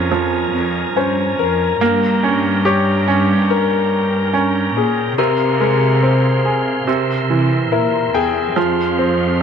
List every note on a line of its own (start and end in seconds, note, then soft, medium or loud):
0.00 0.50 F2 loud
0.00 0.12 F3 medium
0.00 0.96 C#4 soft
0.00 1.03 G#4 medium
0.00 5.14 A#4 soft
0.00 1.77 G#5 soft
0.00 5.15 A#5 medium
0.12 1.76 F3 soft
0.54 0.93 F2 medium
0.96 1.35 G2 medium
0.96 1.78 C#4 soft
0.96 1.40 C5 medium
1.38 1.77 F2 medium
1.38 2.61 A#4 medium
1.80 4.72 G2 loud
1.80 5.15 A#3 medium
1.80 5.15 G5 medium
2.23 3.06 C#4 soft
2.65 4.30 G4 medium
2.65 3.52 C#5 medium
3.08 4.32 C#4 soft
3.50 4.80 A#4 medium
4.33 5.16 C#4 soft
4.76 5.15 A#2 medium
4.76 5.20 G#4 medium
5.18 6.83 C3 loud
5.18 6.83 C3 medium
5.18 6.86 G#4 medium
5.18 5.59 A#4 medium
5.18 6.86 F5 medium
5.18 9.43 C6 medium
5.60 6.84 G#3 soft
5.60 7.68 A#4 medium
6.03 6.85 C4 soft
6.45 6.86 G#4 soft
6.87 7.26 C3 medium
6.87 8.53 C3 medium
6.87 8.55 A#4 medium
6.87 8.54 E5 soft
7.29 7.69 C3 medium
7.29 8.53 E3 soft
7.71 8.11 A#2 medium
7.71 8.54 E4 soft
7.71 8.15 A#4 medium
8.13 8.53 E2 medium
8.13 9.43 G#4 medium
8.13 8.55 G5 soft
8.55 9.43 F2 medium
8.55 9.39 F3 medium
8.55 9.43 C5 medium
8.55 9.43 F5 soft
8.99 9.43 C4 soft